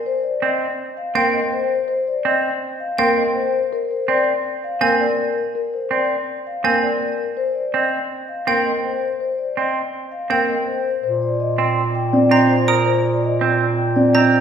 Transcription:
0.06 0.30 C5 medium
0.23 0.48 D5 soft
0.42 0.66 C4 soft
0.42 0.66 D#5 soft
0.97 1.21 F5 soft
1.15 1.39 A#3 medium
1.15 1.39 C4 medium
1.15 1.39 G5 medium
1.33 1.58 D#5 medium
1.52 1.76 C5 medium
1.88 2.12 C5 medium
2.07 2.31 D5 soft
2.25 2.49 C4 medium
2.25 2.49 D#5 medium
2.80 3.04 F5 medium
2.98 3.22 A#3 medium
2.98 3.22 C4 medium
2.98 3.22 G5 medium
3.17 3.41 D#5 soft
3.35 3.59 C5 medium
3.73 3.96 A#4 medium
3.91 4.14 C5 medium
4.08 4.32 C4 medium
4.08 4.32 D5 medium
4.64 4.87 F5 medium
4.81 5.05 A#3 medium
4.81 5.05 C4 medium
4.81 5.05 G#5 medium
5.00 5.24 D5 medium
5.19 5.42 A#4 soft
5.55 5.79 A#4 medium
5.74 5.97 C5 soft
5.91 6.15 C4 soft
5.91 6.15 D5 soft
6.47 6.70 F5 soft
6.64 6.88 A#3 medium
6.64 6.88 C4 medium
6.64 6.88 G#5 medium
6.83 7.06 D5 medium
7.01 7.25 A#4 medium
7.37 7.61 C5 medium
7.55 7.79 D5 soft
7.74 7.98 C4 soft
7.74 7.98 D#5 soft
8.28 8.53 F5 soft
8.47 8.71 A#3 medium
8.47 8.71 C4 medium
8.47 8.71 G5 medium
8.66 8.89 D#5 soft
8.84 9.08 C5 soft
9.20 9.44 C5 medium
9.38 9.62 D5 soft
9.57 9.81 C4 soft
9.57 9.81 D#5 soft
10.12 10.36 F5 soft
10.30 10.54 A#3 soft
10.30 10.54 C4 medium
10.30 10.54 G5 medium
10.49 10.72 D#5 soft
10.67 10.91 C5 soft
11.03 14.40 A#2 medium
11.03 11.27 C5 medium
11.22 11.46 D5 soft
11.40 11.64 D#5 medium
11.58 11.82 C4 soft
11.95 12.19 G5 medium
12.13 12.37 C4 medium
12.13 12.37 D5 medium
12.31 12.55 C4 medium
12.31 12.55 D#5 soft
12.31 12.55 A#5 medium
12.49 12.73 C5 medium
12.68 12.92 A#4 soft
12.68 12.92 D#6 medium
12.86 13.10 C5 medium
13.05 13.28 D5 soft
13.23 13.47 D#5 medium
13.41 13.65 C4 soft
13.78 14.02 G5 medium
13.96 14.20 C4 medium
13.96 14.20 D5 medium
14.15 14.38 C4 medium
14.15 14.38 D#5 medium
14.15 14.38 A#5 medium
14.33 14.40 C5 medium

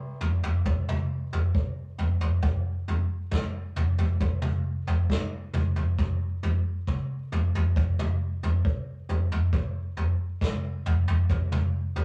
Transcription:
0.21 floor tom medium
0.43 floor tom medium
0.65 kick loud
0.65 floor tom medium
0.89 floor tom medium
0.89 mid tom medium
1.33 floor tom medium
1.55 kick loud
1.98 floor tom medium
2.21 floor tom medium
2.42 kick loud
2.42 floor tom medium
2.88 floor tom medium
3.31 kick loud
3.31 snare medium
3.31 floor tom medium
3.31 mid tom medium
3.76 floor tom medium
3.76 mid tom medium
3.98 floor tom medium
4.20 kick loud
4.20 floor tom medium
4.42 floor tom medium
4.42 mid tom medium
4.87 floor tom loud
5.10 kick loud
5.10 snare medium
5.53 floor tom medium
5.53 mid tom medium
5.76 floor tom medium
5.99 kick loud
5.99 floor tom medium
6.43 floor tom medium
6.87 kick loud
6.87 mid tom medium
7.32 floor tom medium
7.55 floor tom medium
7.76 kick loud
7.76 floor tom medium
7.99 floor tom medium
7.99 mid tom medium
8.43 floor tom medium
8.65 kick loud
9.09 floor tom medium
9.32 floor tom medium
9.53 kick loud
9.53 floor tom medium
9.97 floor tom medium
10.41 kick loud
10.41 snare medium
10.41 floor tom medium
10.41 mid tom medium
10.86 floor tom medium
10.86 mid tom medium
11.08 floor tom medium
11.29 kick loud
11.29 floor tom medium
11.52 floor tom medium
11.52 mid tom medium
11.96 floor tom medium

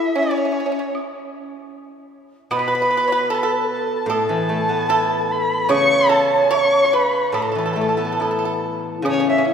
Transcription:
0.00 0.09 E4 medium
0.00 0.13 E4 medium
0.00 0.20 E5 medium
0.09 0.18 E4 soft
0.15 0.21 C#4 medium
0.15 0.96 C#4 medium
0.15 0.97 C#5 medium
0.23 0.30 C#4 soft
0.31 0.36 C#4 soft
0.37 0.44 C#4 soft
0.45 0.51 C#4 soft
0.52 0.59 C#4 soft
0.60 0.65 C#4 soft
0.66 0.71 C#4 soft
0.72 0.78 C#4 soft
0.79 0.88 C#4 soft
0.95 high woodblock soft
2.51 4.09 B2 medium
2.51 2.58 B4 medium
2.51 3.31 B4 medium
2.51 high woodblock medium
2.56 2.66 B4 soft
2.56 3.35 B5 medium
2.68 2.74 B4 medium
2.75 2.81 B4 soft
2.82 2.89 B4 medium
2.91 2.96 B4 soft
2.97 3.04 B4 medium
3.08 3.12 C#5 medium
3.12 3.30 B4 medium
3.30 3.43 A4 medium
3.30 3.42 A4 medium
3.30 3.39 A5 medium
3.38 3.49 B5 medium
3.43 4.05 A4 medium
3.43 3.54 A4 medium
3.48 4.11 A5 medium
3.53 3.60 B4 medium
3.60 3.66 B4 medium
3.65 4.11 A4 medium
4.06 5.68 A2 medium
4.06 4.86 A4 medium
4.10 5.71 A4 medium
4.10 5.33 A5 medium
4.10 high woodblock soft
4.29 5.90 E3 soft
4.49 6.10 A3 soft
4.69 6.30 B3 soft
4.89 6.51 E4 soft
4.89 5.66 A4 medium
5.32 5.71 B5 medium
5.69 7.33 C#3 medium
5.69 6.07 C#5 medium
5.69 5.75 E5 medium
5.69 6.13 C#6 loud
5.69 high woodblock medium
5.74 6.51 C#5 medium
6.09 6.48 A4 medium
6.09 6.53 A5 medium
6.51 6.83 C#5 medium
6.51 6.59 E5 medium
6.51 6.95 C#6 medium
6.51 low woodblock soft
6.58 6.96 C#5 medium
6.85 6.92 C#5 soft
6.93 7.32 B4 medium
6.93 7.37 B4 medium
6.93 7.33 B5 medium
7.32 9.54 A2 soft
7.32 7.41 A4 medium
7.32 8.64 A4 medium
7.32 8.59 A5 medium
7.32 high woodblock soft
7.42 7.49 A4 soft
7.52 9.26 E3 soft
7.52 7.57 A4 soft
7.58 7.64 A4 soft
7.66 7.72 A4 soft
7.73 9.46 A3 soft
7.73 7.80 A4 soft
7.81 7.88 A4 soft
7.89 7.96 A4 soft
7.97 9.54 B3 soft
7.97 8.04 A4 soft
8.05 8.11 A4 soft
8.12 8.20 A4 soft
8.20 9.54 E4 soft
8.20 8.29 A4 soft
8.20 high woodblock soft
8.20 low woodblock soft
8.31 8.37 A4 soft
8.39 8.44 A4 soft
8.45 8.53 A4 soft
8.98 9.06 E4 soft
9.02 9.54 C#3 medium
9.02 9.45 C#4 medium
9.02 9.12 C#4 medium
9.02 high woodblock medium
9.09 9.26 C#5 loud
9.13 9.19 C#4 soft
9.20 9.27 C#4 soft
9.30 9.36 C#4 soft
9.30 9.47 E5 medium
9.38 9.44 C#4 soft
9.45 9.51 C#4 soft
9.45 9.54 E4 medium

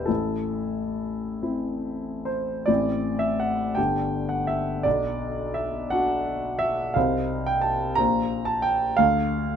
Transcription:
0.00 0.12 D4 soft
0.00 0.07 E4 soft
0.00 0.12 G4 soft
0.00 0.06 A4 soft
0.00 0.12 B4 soft
0.00 0.12 C5 medium
0.00 0.11 D5 medium
0.00 0.12 E5 medium
0.06 2.64 A1 soft
0.06 1.41 E4 soft
0.06 2.27 A4 medium
1.42 2.65 C4 soft
1.42 2.65 E4 soft
2.25 2.67 C5 medium
2.66 3.74 A1 soft
2.66 3.73 C4 soft
2.66 3.73 E4 soft
2.66 3.22 D5 medium
3.19 3.39 E5 medium
3.40 3.77 F#5 medium
3.75 4.83 G1 soft
3.75 4.81 D4 soft
3.75 4.81 G4 soft
3.75 4.30 G5 medium
4.29 4.48 F#5 medium
4.47 4.84 E5 medium
4.83 6.92 B1 soft
4.83 5.55 D5 medium
5.54 5.90 E5 medium
5.90 6.93 D4 soft
5.90 6.93 F#4 soft
5.90 6.60 F#5 medium
6.59 6.95 E5 medium
6.94 7.95 C2 medium
6.94 7.95 D#4 soft
6.94 7.95 C5 soft
6.94 7.46 F5 medium
7.46 7.64 G5 medium
7.61 7.97 A5 medium
7.95 8.96 A#1 medium
7.95 8.95 F4 soft
7.95 8.95 C5 soft
7.95 8.48 A#5 medium
8.45 8.64 A5 medium
8.62 8.97 G5 medium
8.97 9.56 D2 medium
8.97 9.56 F5 medium

